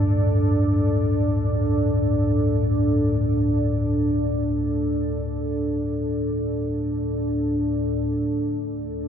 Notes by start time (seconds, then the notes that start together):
Already playing: D2 G2 A2 D4 A4 D5
8.05 D2 A2